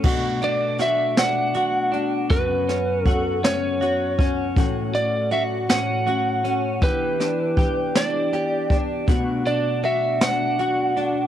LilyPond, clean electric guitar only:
\new Staff \with { instrumentName = "Clean electric guitar" } { \time 6/8 \key b \minor \tempo 4. = 53 <b, fis'>8 d'8 fis'8 d'8 fis'8 d'8 | <fis, fis'>8 cis'8 fis'8 cis'8 fis'8 cis'8 | <a, fis'>4 fis'8 cis'8 fis'8 cis'8 | <e g'>8 d'8 g'8 d'8 g'8 d'8 |
<b, fis'>8 d'8 fis'8 d'8 fis'8 d'8 | }